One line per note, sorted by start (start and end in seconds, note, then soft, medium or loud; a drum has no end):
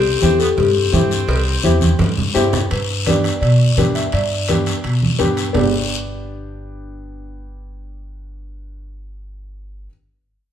0.00 0.15 C2 loud
0.00 0.19 C4 medium
0.00 0.19 G4 medium
0.21 0.51 E2 loud
0.21 0.47 C4 medium
0.21 0.38 C4 medium
0.21 0.47 E4 medium
0.21 0.40 G4 medium
0.21 0.47 G4 medium
0.21 high conga medium
0.21 short guiro medium
0.39 0.48 B3 medium
0.39 0.47 A4 medium
0.39 short guiro medium
0.57 0.86 G2 loud
0.57 2.31 C4 medium
0.57 2.31 G4 medium
0.57 cowbell medium
0.57 low conga medium
0.57 long guiro medium
0.93 1.21 G2 loud
0.93 1.18 C4 medium
0.93 1.18 E4 medium
0.93 1.18 G4 medium
0.93 high conga medium
0.93 low conga medium
0.93 short guiro medium
1.11 short guiro medium
1.28 1.56 C2 loud
1.28 cowbell loud
1.28 long guiro medium
1.63 1.92 E2 loud
1.63 1.88 C4 medium
1.63 1.89 E4 medium
1.63 1.89 G4 medium
1.63 high conga medium
1.63 short guiro medium
1.81 high conga medium
1.81 short guiro medium
1.99 2.28 G2 loud
1.99 cowbell medium
1.99 high conga loud
1.99 long guiro medium
2.18 low conga medium
2.34 2.64 G2 medium
2.34 2.59 C4 medium
2.34 2.59 E4 medium
2.34 2.60 G4 loud
2.34 low timbale medium
2.34 short guiro medium
2.53 low conga loud
2.53 short guiro medium
2.71 3.28 G2 loud
2.71 3.04 B4 medium
2.71 high timbale medium
2.71 long guiro medium
3.06 3.31 B3 medium
3.06 3.31 D4 medium
3.06 3.32 G4 medium
3.06 3.39 D5 medium
3.06 high conga medium
3.06 high timbale medium
3.06 short guiro medium
3.24 high timbale medium
3.24 short guiro medium
3.41 3.70 B2 medium
3.41 3.96 D5 medium
3.41 high timbale medium
3.41 long guiro medium
3.77 4.06 G2 medium
3.77 4.02 B3 medium
3.77 4.03 D4 medium
3.77 4.03 G4 medium
3.77 high conga medium
3.77 high timbale medium
3.77 short guiro medium
3.95 4.11 E5 medium
3.95 high timbale medium
3.95 short guiro medium
4.12 4.70 G2 loud
4.12 5.16 D5 medium
4.12 high timbale medium
4.12 long guiro medium
4.48 4.73 B3 medium
4.48 4.74 D4 medium
4.48 4.74 G4 medium
4.48 high conga medium
4.48 high timbale medium
4.48 short guiro medium
4.66 high timbale medium
4.66 short guiro medium
4.84 5.13 B2 medium
4.84 high timbale medium
4.84 long guiro medium
5.03 high conga medium
5.19 5.48 G2 medium
5.19 5.44 B3 medium
5.19 5.44 D4 medium
5.19 5.45 G4 medium
5.19 high conga medium
5.19 high timbale medium
5.19 short guiro medium
5.37 high timbale medium
5.37 short guiro medium
5.53 9.86 G1 medium
5.53 9.85 B3 medium
5.53 9.86 D4 medium
5.53 9.87 G4 medium
5.53 9.86 D5 medium
5.53 low conga loud
5.53 low timbale medium
5.53 long guiro medium